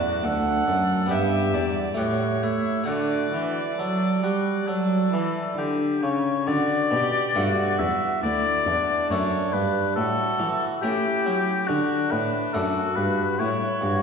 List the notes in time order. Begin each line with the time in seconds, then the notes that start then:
Already playing: E2 F#4 A4 D5
0.24 D2 A4 F#5
0.68 F#2
1.06 B3 G4 D5
1.11 G2 G4 E5
1.54 E2 D5
1.94 A2 A3 F#4 G4 A4
1.98 A2 C#5
2.43 A3 E4
2.84 D3 A3 F#4 A4
2.88 D3 D5
3.32 E3
3.78 F#3 A4
4.22 G3 F#4
4.67 F#3 A4
5.12 E3
5.58 D3 G4
6.03 C#3 C#5
6.47 D3 F#4 D5
6.91 B2 G4
7.35 G2 A3 F#4 A4
7.79 E2 E5
8.23 D2 E4 D5
8.66 E2 D4
9.10 F#2 A3 F#4 A4 C#5
9.53 G2 B4
9.96 A2 F#4 A4
10.39 E3
10.82 A3 C#4 E4 G4
11.26 F#3
11.68 D3 D4 F#4
12.11 A2 B4
12.54 F#2 A3 D4 F#4 A4
12.96 G2 B4
13.39 A2 E4 C#5
13.81 G2 F#4